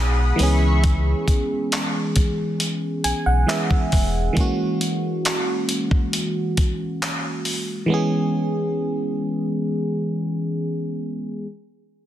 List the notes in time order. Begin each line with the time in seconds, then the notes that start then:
Already playing: B1 F#3 G#3 B3 D#4 G#4 F#5 B5 D#6
0.36 C#2 E3 G#3 B3, open hi-hat
0.40 C#4 G#4 E5 B5 C#6
0.84 kick, closed hi-hat
1.28 kick, closed hi-hat
1.72 clap, closed hi-hat
2.16 kick, closed hi-hat
2.60 closed hi-hat
3.04 B1 G#5, closed hi-hat
3.26 B1 F#5
3.47 E3 G#3 B3 C#4 G#4 E5, clap, closed hi-hat
3.71 kick
3.92 E1, kick, open hi-hat
4.33 E3 G#3 A#3, kick, closed hi-hat
4.38 C#4 F#4
4.81 closed hi-hat
5.25 clap, closed hi-hat
5.69 closed hi-hat
5.91 kick
6.13 closed hi-hat
6.57 kick, closed hi-hat
7.02 clap, closed hi-hat
7.45 open hi-hat
7.86 E3 G#3 B3
7.92 C#4 G#4